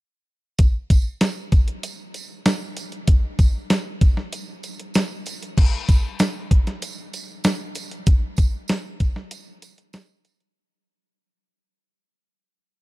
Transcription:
0.59 kick, closed hi-hat, tambourine
0.90 kick, closed hi-hat, tambourine
1.21 snare, closed hi-hat, tambourine
1.52 kick, closed hi-hat, tambourine
1.68 closed hi-hat
1.83 closed hi-hat, tambourine
2.14 closed hi-hat, tambourine
2.46 snare, closed hi-hat, tambourine
2.77 closed hi-hat, tambourine
2.92 closed hi-hat
3.08 kick, closed hi-hat, tambourine
3.39 kick, closed hi-hat, tambourine
3.70 snare, closed hi-hat, tambourine
4.01 kick, closed hi-hat, tambourine
4.17 snare
4.32 closed hi-hat, tambourine
4.63 closed hi-hat, tambourine
4.80 closed hi-hat
4.94 snare, closed hi-hat, tambourine
5.26 closed hi-hat, tambourine
5.43 closed hi-hat
5.57 kick, crash, tambourine
5.88 kick, closed hi-hat, tambourine
6.19 snare, closed hi-hat, tambourine
6.51 kick, closed hi-hat
6.67 snare, closed hi-hat
6.82 closed hi-hat, tambourine
7.13 closed hi-hat, tambourine
7.44 snare, closed hi-hat, tambourine
7.75 closed hi-hat, tambourine
7.91 closed hi-hat
8.06 kick, closed hi-hat, tambourine
8.37 kick, closed hi-hat, tambourine
8.68 snare, closed hi-hat, tambourine
9.00 kick, closed hi-hat, tambourine
9.16 snare
9.31 closed hi-hat, tambourine
9.62 closed hi-hat, tambourine
9.78 closed hi-hat
9.93 snare, closed hi-hat, tambourine
10.25 closed hi-hat, tambourine
10.40 closed hi-hat

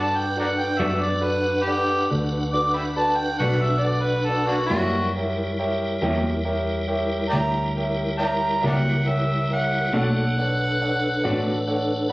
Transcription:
Already playing: G2 D4 F#4 A4 B4 D5 F#5 A5
0.17 G5
0.36 F#4 A4 A#4 B4 D5 F#5
0.59 G5
0.78 F#2 G3 B3 D4 F#4 A4 B4 D5 E5
1.01 D5
1.21 F#4 A4 B4 D5
1.63 G4 A4 B4 D5 F#5
2.10 D2 F#4 A4 B4 D5
2.53 F#4 A4 B4 D5 D6
2.74 E5 G5 B5
2.96 F#4 A4 B4 D5 A5
3.16 G5
3.39 B1 G3 B3 D4 F#4 A4 B4 D5 F#5
3.62 E5
3.80 D5
3.84 F#4 A4 B4 D5
4.02 B4
4.25 A4 D5
4.29 F#4 A4 B4
4.47 A#3 D4 F#4
4.66 F#3 A#3 E4 F#4 A#4
4.71 F#2 G3 E4 G4 A#4 C#5 E5
5.16 G4 A#4 C#5 E5
5.59 G4 A#4 C#5 E5
6.01 E2 F#3 A#3 E4 G4 A#4 C#5 E5
6.45 G4 A#4 C#5 E5
6.88 G4 A#4 C#5 E5
7.30 D2 G4 A#4 C#5 D5 E5 G5 A#5
7.76 G4 A#4 C#5 E5
8.18 G4 A#4 C#5 D5 E5 G5 A#5
8.61 C#2 E4 G4 A#4 C#5 E5
8.65 F#3 A#3 A#4 D5 F#5
9.06 G4 A#4 C#5 E5
9.51 G4 A#4 C#5 E5 F#5
9.93 B1 B2 A3 A#3 D4 D#4 F#4 A4 C#5 D5 F#5
10.38 D4 A4 B4 C#5 D5 F#5
10.81 A4 C#5 D5 F#5
11.24 A1 B2 A3 D4 F#4 A4 C#5 D5 F#5
11.67 A4 C#5 D5 F#5
12.08 A4 C#5 D5 F#5

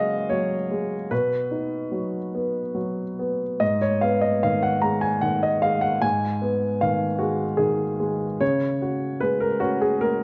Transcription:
Already playing: C#3 F#3 G#3 F#4 D#5 F5 F#5
0.30 F#3 C#5
0.72 G#3
1.11 B2 B4
1.51 D#4
1.92 F#3
2.35 B3
2.74 F#3
3.19 B3
3.60 G#2 D#5
3.82 C#5
4.01 B3 F5
4.21 D#5
4.43 D#3 F5
4.62 F#5
4.81 G#3 A#5
5.01 G#5
5.21 D#3 F#5
5.43 D#5
5.62 G#3 F5
5.81 F#5
6.02 G#2 G#5
6.42 B3
6.81 D#3 F5
7.19 G#3 F#4
7.57 D#3 G#4
8.00 G#3
8.41 C#3 C#5
8.82 F#4
9.20 G#3 B4
9.40 A#4
9.60 C#4 F#4
9.81 G#4
10.01 G#3 A#4

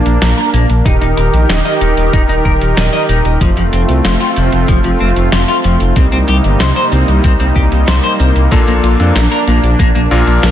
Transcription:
Already playing: A#3 D4
0.06 A#1, closed hi-hat
0.22 A#1 A#4, snare, closed hi-hat
0.37 A#4, closed hi-hat
0.54 A#1 A#3, closed hi-hat
0.70 A#1, closed hi-hat
0.85 D#1 D#3 D#4 G4 A#4, kick, closed hi-hat
1.01 D#1 D#4, closed hi-hat
1.17 D#1 A#4, closed hi-hat
1.33 A#1, closed hi-hat
1.49 D#1 D#5, snare, closed hi-hat
1.65 D#5, closed hi-hat
1.81 D#1 D#4, closed hi-hat
1.97 D#1, closed hi-hat
2.13 D#1 D#4, kick, closed hi-hat
2.29 D#1 D#4, closed hi-hat
2.45 D#1 A#4, kick
2.61 D#1, closed hi-hat
2.77 D#1 D#5, snare, closed hi-hat
2.93 D#5, closed hi-hat
3.09 D#1 D#4, closed hi-hat
3.25 D#1, closed hi-hat
3.41 F1 F3 A3 C4 F4, kick, closed hi-hat
3.57 F1 F3, closed hi-hat
3.73 F1 C4, closed hi-hat
3.89 C2, closed hi-hat
4.05 F1 F4, snare, closed hi-hat
4.20 F4, closed hi-hat
4.36 F1 F3, closed hi-hat
4.52 F1, closed hi-hat
4.68 F1 F3, kick, closed hi-hat
4.84 F1 F3, closed hi-hat
5.00 F1 C4
5.16 F1, closed hi-hat
5.32 F1 F4, snare, closed hi-hat
5.48 F4, closed hi-hat
5.64 F1 F3, closed hi-hat
5.80 F1, closed hi-hat
5.96 C2 C3 G3 A#3 C4 D#4, kick, closed hi-hat
6.12 C2 C4, closed hi-hat
6.28 C2 G4, closed hi-hat
6.44 G1, closed hi-hat
6.60 C2 C5, snare, closed hi-hat
6.76 C5, closed hi-hat
6.92 C2 C4, closed hi-hat
7.08 C2, closed hi-hat
7.24 C2 C4, kick, closed hi-hat
7.40 C2 C4, closed hi-hat
7.56 C2 G4, kick
7.72 C2, closed hi-hat
7.87 C2 C5, snare, closed hi-hat
8.04 C5, closed hi-hat
8.20 C2 C4, closed hi-hat
8.36 C2, closed hi-hat
8.51 A#1 A#2 A#3 D4 F4 A4, kick, closed hi-hat
8.67 A#1 A#3, closed hi-hat
8.83 A#1 F4, closed hi-hat
9.00 F2 A#2 A#3 D4 F4 A4, closed hi-hat
9.15 A#1 A#4, snare, closed hi-hat
9.32 A#4, closed hi-hat
9.47 A#1 A#3, closed hi-hat
9.63 A#1, closed hi-hat
9.79 A#1 A#3, kick, closed hi-hat
9.95 A#1 A#3, closed hi-hat
10.11 A#1 A#2 A#3 D4 F4 A#4
10.27 A#1, closed hi-hat
10.43 A#1 A#4, snare, closed hi-hat

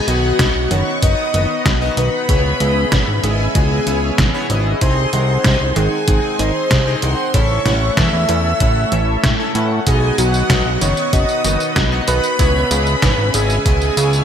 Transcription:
Already playing: B3 B4 D#5 F#5
0.08 B1 D#3 B3 D#4 F#4 F#5, closed hi-hat
0.39 B1 F#3 B3 D#4 F#4 D#5, kick, snare, closed hi-hat
0.55 B1
0.71 F#1 D#3 B3 D#4 F#4 C#5 F#5 C#6, closed hi-hat
1.02 F#1 B2 B3 D#4 F#4 D#5 F#5 D#6, kick, closed hi-hat
1.34 F#1 D#3 B3 D#4 F#4 D#5, closed hi-hat
1.66 B1 F#3, kick, snare, closed hi-hat
1.82 B3 D#4 F#4 D#5
1.97 B1 D#3 B3 D#4 F#4 B4 F#5 B5, closed hi-hat
2.29 C#2 B2 B3 C#4 E4 G#4 C#5 E5, kick, closed hi-hat
2.60 C#2 C#3 B3 E4 G#4 D#5, closed hi-hat
2.92 G#1 E3 B3 E4 G#4 C#5, kick, snare, closed hi-hat
3.08 G#1
3.23 G#1 C#3 B3 E4 G#4 D#5 G#5, closed hi-hat
3.55 C#2 B2 B3 E4 G#4 D#5 G#5, kick, closed hi-hat
3.86 C#2 C#3 B3 E4 G#4 C#5, closed hi-hat
4.18 G#1 E3, kick, snare, closed hi-hat
4.34 B3 E4 G#4 C#5
4.50 G#1 C#3 B3 E4 G#4 D#5, closed hi-hat
4.81 C2 C3 C4 D#4 G#4 C5 D#5 C6, kick, closed hi-hat
5.13 C2 D#3 C4 D#4 G#4 C5 F#5 C6, closed hi-hat
5.44 C2 G#3 C4 D#4 G#4 D#5, kick, snare, closed hi-hat
5.60 C2
5.76 G#1 D#3 C4 D#4 G#4 F#5 G#5, closed hi-hat
6.08 G#1 C3 C4 D#4 G#4 F#5 G#5, kick, closed hi-hat
6.39 G#1 D#3 C4 D#4 G#4 C5 D#5 C6, closed hi-hat
6.71 C2 G#3, kick, snare, closed hi-hat
6.87 C4 D#4 G#4 D#5
7.02 C2 D#3 C4 D#4 G#4 C5 F#5 C6, closed hi-hat
7.34 A1 C#3 A3 C#4 E4 A4 C#5 E5 C#6, kick, closed hi-hat
7.66 A1 E3 C#4 E4 A4 F#5, snare, closed hi-hat
7.97 E2 A3 C#4 E4 A4 E5 E6, kick, snare, closed hi-hat
8.13 E2
8.29 E2 E3 C#4 E4 A4 F#5, closed hi-hat
8.60 A1 C#3 C#4 E4 A4 F#5, kick, closed hi-hat
8.92 A1 E3 C#4 E4 A4 E5, closed hi-hat
9.24 A2 A3, kick, snare, closed hi-hat
9.39 C#4 E4 A4 E5
9.55 A2 E3 C#4 E4 A4 F#5, closed hi-hat
9.87 B1 B2 B3 D#4 F#4 G#4 B4 D#5 F#5 G#5, kick, closed hi-hat, tambourine
10.18 B1 D#3 B3 D#4 F#4 F#5, closed hi-hat, tambourine
10.34 tambourine
10.50 B1 F#3 B3 D#4 F#4 D#5, kick, snare, closed hi-hat, tambourine
10.66 B1
10.81 F#1 D#3 B3 D#4 F#4 C#5 F#5 C#6, closed hi-hat, tambourine
10.97 tambourine
11.13 F#1 B2 B3 D#4 F#4 D#5 F#5 D#6, kick, closed hi-hat, tambourine
11.29 tambourine
11.44 F#1 D#3 B3 D#4 F#4 D#5, closed hi-hat, tambourine
11.60 tambourine
11.76 B1 F#3, kick, snare, closed hi-hat, tambourine
11.92 B3 D#4 F#4 D#5
12.08 B1 D#3 B3 D#4 F#4 B4 F#5 B5, closed hi-hat, tambourine
12.23 tambourine
12.39 C#2 B2 B3 C#4 E4 G#4 C#5 E5, kick, closed hi-hat, tambourine
12.71 C#2 C#3 B3 E4 G#4 D#5, closed hi-hat, tambourine
12.87 tambourine
13.02 G#1 E3 B3 E4 G#4 C#5, kick, snare, closed hi-hat, tambourine
13.18 G#1
13.34 G#1 C#3 B3 E4 G#4 D#5 G#5, closed hi-hat, tambourine
13.50 tambourine
13.66 C#2 B2 B3 E4 G#4 D#5 G#5, kick, closed hi-hat, tambourine
13.82 tambourine
13.97 C#2 C#3 B3 E4 G#4 C#5, closed hi-hat, tambourine
14.13 tambourine

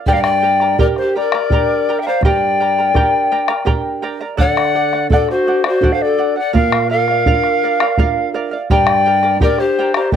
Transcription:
0.06 G2 G4 A#4 D5 G5 A#5, bombo low
0.13 D5 F5
0.20 D5 G5, bombo rim
0.42 A#4 D5 G5 A#5
0.60 A#4 D5 A#5, bombo rim
0.78 D4 G4 A#4 D5 G5 A#5, bombo low
0.96 C5, bombo rim
1.01 G4
1.16 A#4 D5 G5 A#5
1.32 A#4 D5 A#5, bombo rim
1.50 D4 G4 A#4 D5 G5 A#5, bombo low
1.89 A#4 D5 G5 A#5
1.99 E5 G5
2.06 A#4 C5 D5 F5 A#5
2.21 G2 G4 G5, bombo rim, bombo low
2.25 A#4 D5 A#5
2.60 A#4 D5 G5 A#5
2.78 A#4 D5 A#5
2.94 D4 G4 A#4 D5 G5 A#5, bombo rim, bombo low
3.31 A#4 D5 G5 A#5
3.48 A#4 D5 A#5, bombo rim
3.65 D4 G4 A#4 D5 G5 A#5, bombo rim, bombo low
4.02 A#4 D5 G5 A#5
4.21 A#4 D5 A#5
4.37 D3 A4 D5 F#5, bombo low
4.57 bombo rim
4.75 A4 D5 F#5
4.93 D5 F#5, bombo rim
5.10 D4 F#4 A4 D5 F#5, bombo low
5.29 F#4 C5, bombo rim
5.47 A4 D5 F#5
5.64 C5 D5 F#5, bombo rim
5.68 F#4
5.81 D4 F#4 A4 D5 F#5, bombo low
5.92 C5 F5
6.02 A4 D5
6.18 A4 D5 F#5
6.36 D5 F#5
6.53 A#2 A#4 D5 F5, bombo low
6.72 bombo rim
6.90 A#4 D5 F5
7.08 D5 F5, bombo rim
7.26 D4 F4 A#4 D5 F5, bombo low
7.44 bombo rim
7.63 A#4 D5 F5
7.80 D5 F5, bombo rim
7.98 D4 F4 A#4 D5 F5, bombo low
8.34 A#4 D5 F5
8.51 D5 F5
8.70 G2 G4 A#4 D5 G5 A#5, bombo low
8.87 bombo rim
9.06 A#4 D5 G5 A#5
9.23 A#4 D5 A#5, bombo rim
9.40 D4 G4 A#4 D5 G5 A#5, bombo low
9.58 G4 C5, bombo rim
9.79 A#4 D5 G5 A#5
9.94 G4 A#4 C5 D5 A#5, bombo rim
10.12 D4 G4 A#4 D5, bombo low

